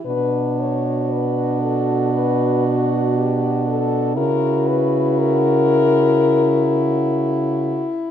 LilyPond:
<<
  \new Staff \with { instrumentName = "French horn" } { \time 4/4 \key b \minor \tempo 4 = 60 b'8 cis''8 b'8 a'8 b'8 fis'8 g'8 a'8 | ais'8 b'8 ais'2~ ais'8 r8 | }
  \new Staff \with { instrumentName = "French horn" } { \time 4/4 \key b \minor fis'1 | fis'2.~ fis'8 r8 | }
  \new Staff \with { instrumentName = "French horn" } { \time 4/4 \key b \minor d'1 | e'1 | }
  \new Staff \with { instrumentName = "French horn" } { \clef bass \time 4/4 \key b \minor b,1 | cis2.~ cis8 r8 | }
>>